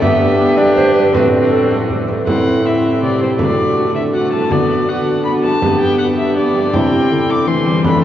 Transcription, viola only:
0.02 0.38 B3 medium
0.39 0.58 B3 medium
0.57 1.15 D4 medium
1.13 2.08 C4 medium
2.27 2.62 C4 medium
2.64 3.40 C4 medium
3.38 4.12 A3 medium
4.13 4.52 A3 medium
4.50 4.87 B3 medium
4.87 5.24 B3 medium
5.24 5.61 B3 medium
5.62 6.34 B3 medium
6.36 6.72 B3 medium
6.73 7.49 C4 medium
7.47 7.67 A3 medium
7.66 7.86 G3 medium
7.84 8.04 A3 medium

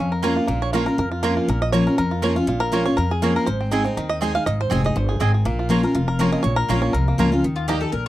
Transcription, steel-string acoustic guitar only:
0.00 0.46 F2 medium
0.23 0.47 F3 medium
0.23 0.48 A#3 medium
0.23 0.48 C#4 loud
0.23 0.48 F4 medium
0.48 0.96 A#2 medium
0.73 0.86 F3 medium
0.73 0.87 A#3 loud
0.73 0.87 C#4 medium
0.73 0.85 F4 medium
0.86 0.99 C#4 medium
0.86 0.98 F4 medium
0.98 1.46 F2 medium
1.23 1.47 F3 medium
1.23 1.47 A#3 medium
1.23 1.47 C#4 loud
1.23 1.48 F4 loud
1.48 1.96 A#2 medium
1.73 1.86 F3 medium
1.73 1.86 A#3 medium
1.73 1.86 C#4 medium
1.73 1.86 F4 loud
1.87 1.98 C#4 medium
1.87 1.98 F4 medium
1.98 2.46 F2 medium
2.22 2.35 F3 medium
2.22 2.36 A#3 medium
2.22 2.36 C#4 medium
2.22 2.35 F4 loud
2.36 2.48 C#4 medium
2.36 2.47 F4 medium
2.47 2.95 A#2 medium
2.72 2.85 F3 medium
2.72 2.85 A#3 medium
2.72 2.86 C#4 medium
2.72 2.85 F4 medium
2.86 2.98 C#4 medium
2.86 2.97 F4 medium
2.98 3.45 F2 medium
3.22 3.46 F3 medium
3.22 3.46 A#3 loud
3.22 3.46 C#4 medium
3.22 3.47 F4 medium
3.47 3.95 G#2 medium
3.71 3.85 G#3 medium
3.71 3.85 C4 medium
3.71 3.85 D#4 loud
3.71 3.84 G#4 loud
3.85 3.97 D#4 soft
3.85 3.96 G#4 medium
3.97 4.44 D#3 medium
4.22 4.35 G#3 medium
4.22 4.35 C4 medium
4.22 4.35 D#4 medium
4.22 4.34 G#4 medium
4.35 4.47 D#4 soft
4.35 4.46 G#4 medium
4.47 4.94 G#2 medium
4.71 4.84 G#3 medium
4.71 4.84 C4 medium
4.71 4.84 D#4 medium
4.71 4.83 G#4 loud
4.84 4.96 D#4 medium
4.84 4.95 G#4 medium
4.96 5.19 G2 medium
5.20 5.44 G#2 medium
5.45 5.93 A#2 medium
5.69 5.82 F3 medium
5.69 5.83 A#3 loud
5.69 5.83 C#4 medium
5.69 5.82 F4 loud
5.83 5.95 C#4 soft
5.83 5.94 F4 medium
5.95 6.42 F2 medium
6.19 6.43 F3 loud
6.19 6.43 A#3 loud
6.19 6.43 C#4 loud
6.19 6.44 F4 loud
6.44 6.92 A#2 loud
6.69 6.93 F3 medium
6.69 6.93 A#3 loud
6.69 6.93 C#4 loud
6.69 6.94 F4 loud
6.94 7.41 F2 medium
7.18 7.31 F3 medium
7.18 7.32 A#3 loud
7.18 7.32 C#4 medium
7.18 7.31 F4 loud
7.32 7.44 C#4 medium
7.32 7.43 F4 medium
7.44 7.91 D#3 medium
7.68 7.81 G3 medium
7.68 7.81 A#3 medium
7.68 7.82 D#4 loud
7.68 7.80 G4 medium
7.81 7.93 D#4 soft
7.81 7.92 G4 medium
7.92 8.08 A#2 medium

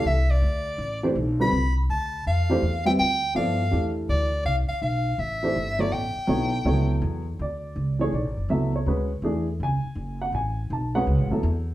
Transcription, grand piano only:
1.03 1.14 E3 medium
1.03 1.14 A3 medium
1.03 1.14 D4 medium
1.03 1.14 G4 medium
1.03 1.15 C5 medium
1.40 1.51 D3 medium
1.40 1.51 G3 medium
1.40 1.51 C4 medium
1.40 1.51 F4 medium
1.40 1.51 B4 medium
2.50 2.61 E3 medium
2.50 2.61 A3 medium
2.50 2.61 D4 medium
2.50 2.61 G4 medium
2.50 2.62 C5 medium
2.85 2.97 G3 medium
2.85 2.97 C4 medium
2.85 2.97 F4 medium
2.85 2.98 B4 medium
2.85 2.97 E5 medium
3.35 3.57 F3 medium
3.35 3.57 B3 medium
3.35 3.57 E4 medium
3.35 3.57 A4 medium
3.35 3.57 D5 medium
3.71 4.28 E3 medium
3.71 4.28 A3 soft
3.71 4.28 D4 soft
3.71 4.28 G4 soft
3.71 4.28 A4 medium
5.43 5.54 E3 medium
5.43 5.55 A3 medium
5.43 5.55 D4 medium
5.43 5.55 G4 soft
5.43 5.55 C5 medium
5.79 5.91 F#3 medium
5.79 5.91 B3 medium
5.79 5.91 E4 medium
5.79 5.91 A4 medium
5.79 5.91 C#5 medium
6.27 6.50 F#3 medium
6.27 6.50 B3 medium
6.27 6.50 E4 medium
6.27 6.50 A4 medium
6.27 6.51 C#5 medium
6.65 7.22 F#3 medium
6.65 7.22 B3 medium
6.65 7.22 E4 medium
6.65 7.22 A4 medium
6.65 7.22 C#5 medium
7.42 7.97 D5 medium
7.99 8.11 E3 medium
7.99 8.12 A3 medium
7.99 8.12 D4 medium
7.99 8.12 G#4 medium
7.99 8.13 C#5 medium
8.14 8.48 D5 medium
8.50 8.71 F#3 medium
8.50 8.72 B3 medium
8.50 8.72 E4 medium
8.50 8.72 A4 medium
8.50 8.73 E5 medium
8.76 9.09 C#5 medium
8.87 9.08 G#3 medium
8.87 9.09 C#4 soft
8.87 9.09 F#4 medium
8.87 9.09 B4 medium
9.24 9.45 E3 medium
9.24 9.45 A3 medium
9.24 9.46 D4 medium
9.24 9.46 G#4 medium
9.63 10.18 G#5 medium
10.22 10.34 F#5 medium
10.35 10.68 G#5 medium
10.73 10.95 A5 medium
10.95 11.29 G#3 medium
10.95 11.29 C#4 medium
10.95 11.30 F#4 medium
10.95 11.30 B4 medium
10.95 11.29 F#5 medium
11.31 11.43 F#3 medium
11.31 11.43 B3 medium
11.31 11.43 E4 medium
11.31 11.43 A4 medium

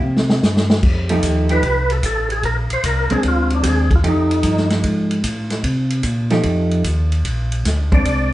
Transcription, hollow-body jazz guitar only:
1.10 1.47 F3 medium
1.10 1.47 A3 medium
1.10 1.47 D#4 medium
1.10 1.48 G4 medium
1.50 1.61 F3 medium
1.50 1.61 A3 medium
1.50 1.62 D#4 medium
1.50 1.61 G4 medium
3.11 3.61 G#3 medium
3.11 3.61 C4 medium
3.11 3.61 D4 medium
3.63 3.87 G#3 medium
3.63 3.87 C4 medium
3.63 3.88 D4 medium
4.04 5.16 F3 soft
4.04 5.16 A3 soft
4.04 5.16 D#4 medium
4.04 5.16 G4 medium
6.31 6.82 F3 medium
6.31 6.82 A3 medium
6.31 6.82 D#4 medium
6.31 6.82 G4 medium
7.92 8.33 G#3 medium
7.92 8.33 C4 medium
7.92 8.33 D4 medium

